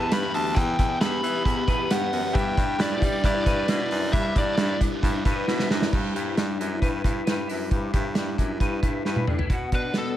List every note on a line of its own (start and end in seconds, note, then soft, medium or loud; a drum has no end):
0.00 0.24 E3 medium
0.00 0.55 E3 medium
0.00 0.24 B3 soft
0.00 0.33 B3 medium
0.00 2.30 E4 medium
0.00 0.11 G4 medium
0.00 0.58 G4 soft
0.00 2.31 G4 medium
0.00 0.22 B4 medium
0.00 1.67 B4 medium
0.00 2.32 E5 medium
0.00 0.13 A5 loud
0.11 0.30 G2 loud
0.11 1.00 G4 medium
0.11 0.35 B5 loud
0.11 snare loud
0.11 closed hi-hat medium
0.23 0.55 E3 medium
0.23 0.57 B3 medium
0.23 0.56 B4 medium
0.34 0.52 D2 loud
0.34 0.78 B3 medium
0.34 0.57 A5 loud
0.34 open hi-hat medium
0.55 0.74 E2 loud
0.55 2.59 E3 medium
0.55 2.03 E3 medium
0.55 1.01 B3 medium
0.55 1.02 G4 medium
0.55 1.03 B4 medium
0.55 0.97 G5 loud
0.55 kick loud
0.55 closed hi-hat medium
0.78 0.97 E2 loud
0.78 1.22 B3 medium
0.78 kick loud
0.78 closed hi-hat medium
1.00 1.19 E2 loud
1.00 1.35 B3 medium
1.00 1.45 G4 medium
1.00 1.34 G4 medium
1.00 1.32 B4 medium
1.00 1.93 B5 loud
1.00 snare loud
1.00 closed hi-hat medium
1.22 1.41 E3 loud
1.22 2.12 B3 medium
1.22 closed hi-hat medium
1.33 1.58 B3 soft
1.33 1.57 G4 medium
1.33 1.56 B4 medium
1.45 1.63 E2 loud
1.45 1.89 G4 medium
1.45 kick medium
1.45 closed hi-hat medium
1.57 2.03 B3 soft
1.57 2.35 G4 medium
1.57 2.02 B4 medium
1.67 1.86 E2 medium
1.67 3.45 B4 medium
1.67 kick medium
1.67 closed hi-hat medium
1.90 2.08 G2 medium
1.90 2.78 G4 medium
1.90 2.34 F#5 medium
1.90 snare medium
1.90 closed hi-hat loud
2.02 2.36 E3 medium
2.02 2.34 B3 medium
2.02 2.35 B4 medium
2.12 2.31 F#2 medium
2.12 2.56 B3 medium
2.12 open hi-hat medium
2.33 2.53 G2 loud
2.33 4.12 G3 medium
2.33 2.78 G3 medium
2.33 2.80 D4 medium
2.33 2.81 E4 medium
2.33 5.87 G4 medium
2.33 5.88 B4 medium
2.33 2.81 B4 medium
2.33 5.89 E5 medium
2.33 2.81 G5 loud
2.33 kick loud
2.33 closed hi-hat medium
2.56 2.75 G2 loud
2.56 3.01 D4 medium
2.56 kick loud
2.56 closed hi-hat medium
2.79 3.04 G2 loud
2.79 3.12 G3 medium
2.79 3.13 D4 medium
2.79 3.22 E4 medium
2.79 3.13 E4 medium
2.79 3.11 B4 medium
2.79 3.25 D5 medium
2.79 snare loud
2.79 closed hi-hat medium
3.02 3.20 G3 loud
3.02 3.90 D4 medium
3.02 kick medium
3.02 closed hi-hat medium
3.12 3.36 D4 soft
3.12 3.35 E4 soft
3.12 3.33 B4 medium
3.23 3.42 G2 loud
3.23 3.68 E4 medium
3.23 4.12 D5 medium
3.23 kick medium
3.23 closed hi-hat medium
3.34 3.80 D4 soft
3.34 3.80 E4 soft
3.34 3.79 B4 soft
3.46 3.64 G2 loud
3.46 5.25 B4 medium
3.46 kick loud
3.46 closed hi-hat medium
3.68 3.87 B2 loud
3.68 4.57 E4 medium
3.68 snare loud
3.68 closed hi-hat medium
3.80 4.11 G3 medium
3.80 4.12 D4 medium
3.80 4.13 E4 medium
3.80 4.13 B4 medium
3.90 4.09 F#2 medium
3.90 4.34 D4 medium
3.90 open hi-hat medium
4.12 4.31 G2 loud
4.12 5.92 G3 medium
4.12 4.56 G3 medium
4.12 4.58 D4 medium
4.12 4.58 E4 medium
4.12 4.60 B4 medium
4.12 4.33 E5 loud
4.12 kick loud
4.12 closed hi-hat medium
4.35 4.54 G2 loud
4.35 4.80 D4 medium
4.35 4.78 D5 medium
4.35 kick loud
4.35 closed hi-hat medium
4.57 4.76 G2 loud
4.57 4.91 G3 medium
4.57 4.91 D4 medium
4.57 5.02 E4 medium
4.57 4.92 E4 medium
4.57 4.90 B4 medium
4.57 snare loud
4.57 closed hi-hat medium
4.80 5.70 D4 medium
4.80 kick medium
4.80 closed hi-hat medium
4.92 5.15 D4 soft
4.92 5.14 E4 soft
4.92 5.12 B4 medium
5.02 5.21 G2 loud
5.02 5.47 E4 medium
5.02 kick medium
5.02 closed hi-hat medium
5.13 5.58 D4 soft
5.13 5.58 E4 soft
5.13 5.57 B4 medium
5.25 5.43 G2 loud
5.25 6.81 B4 medium
5.25 kick medium
5.25 closed hi-hat medium
5.47 5.66 B2 medium
5.47 6.14 E4 medium
5.47 snare medium
5.57 5.92 G3 medium
5.57 5.92 D4 medium
5.57 5.92 E4 medium
5.57 5.91 B4 medium
5.57 snare medium
5.70 5.88 F#2 medium
5.70 6.18 D4 medium
5.70 snare medium
5.82 snare medium
5.93 6.11 G2 medium
5.93 7.69 G3 medium
5.93 kick loud
5.93 crash medium
6.15 6.33 G2 medium
6.15 6.58 E4 medium
6.15 closed hi-hat medium
6.37 6.55 G2 medium
6.37 8.14 D4 medium
6.37 snare loud
6.37 closed hi-hat medium
6.59 6.78 F#2 medium
6.59 7.03 E4 medium
6.59 closed hi-hat medium
6.81 7.00 G2 medium
6.81 7.25 B4 medium
6.81 kick medium
6.81 closed hi-hat medium
7.04 7.22 G2 medium
7.04 7.47 E4 medium
7.04 kick medium
7.04 closed hi-hat medium
7.25 7.45 G2 medium
7.25 8.59 B4 medium
7.25 snare medium
7.25 closed hi-hat medium
7.48 7.67 F#2 medium
7.48 7.92 E4 medium
7.48 open hi-hat medium
7.71 7.89 G2 medium
7.71 9.50 G3 medium
7.71 kick loud
7.71 closed hi-hat medium
7.93 8.12 G2 loud
7.93 8.36 E4 medium
7.93 kick medium
7.93 closed hi-hat medium
8.15 8.34 G2 loud
8.15 9.27 D4 medium
8.15 snare loud
8.15 closed hi-hat medium
8.37 8.57 F#2 medium
8.37 8.81 E4 medium
8.37 kick medium
8.37 closed hi-hat medium
8.60 8.79 G2 medium
8.60 9.05 B4 medium
8.60 kick medium
8.60 closed hi-hat medium
8.82 9.01 G2 medium
8.82 9.27 E4 medium
8.82 kick medium
8.82 closed hi-hat medium
9.05 9.24 G2 loud
9.05 9.50 B4 medium
9.05 snare soft
9.16 high tom medium
9.27 9.46 A2 medium
9.27 9.38 D4 medium
9.27 mid tom medium
9.38 9.54 E4 soft
9.38 floor tom medium
9.49 10.17 B2 medium
9.49 9.68 B2 medium
9.49 10.17 F#4 medium
9.49 kick medium
9.49 closed hi-hat medium
9.72 9.91 B2 medium
9.72 10.16 D4 soft
9.72 9.95 B4 medium
9.72 kick medium
9.72 closed hi-hat medium
9.94 10.13 B2 medium
9.94 10.17 B3 medium
9.94 snare medium
9.94 closed hi-hat medium
9.98 10.17 A4 medium